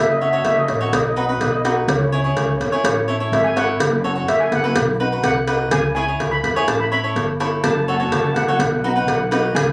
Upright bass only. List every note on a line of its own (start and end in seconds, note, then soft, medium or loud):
0.00 0.41 F#1 medium
0.45 0.66 F#1 medium
0.69 0.91 A1 medium
0.93 1.37 B1 medium
1.41 1.85 B1 medium
1.88 2.32 C#2 medium
2.36 2.58 C#2 medium
2.60 2.82 E2 medium
2.84 3.28 A1 loud
3.32 3.76 G#1 medium
3.80 4.24 F#1 medium
4.28 4.50 F#1 medium
4.51 4.73 F#1 medium
4.76 5.20 B1 medium
5.23 5.68 C2 medium
5.71 6.16 C#2 medium
6.20 6.42 C#2 medium
6.43 6.65 E2 medium
6.68 7.12 A1 loud
7.15 7.60 G1 medium
7.64 8.08 F#1 medium
8.12 8.34 F#1 medium
8.36 8.57 F#1 medium
8.59 9.04 B1 loud
9.07 9.51 B1 medium
9.55 9.72 C#2 medium